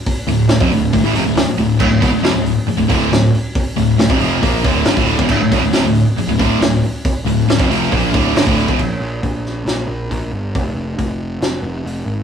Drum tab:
CC |----------------|x---------------|----------------|x---------------|
HH |o-o-o-o-o-o-o-o-|--o-o-o-o-o-o-o-|o-o-o-o-o-o-o-o-|--o-o-o-o-o-o-o-|
SD |----o-------o---|----o-------o---|----o-------o---|----o-------o---|
BD |o----o--o-------|o-o-------o-----|o----o--o-o--o-o|o-o-------o-----|

CC |----------------|x---------------|----------------|
HH |o-o-o-o-o-o-o-o-|----o---o---o---|o---o---o---o---|
SD |----o-------o---|------o-o-------|--------o-------|
BD |o----o--o-o--o-o|o---o-------o---|o---o-----------|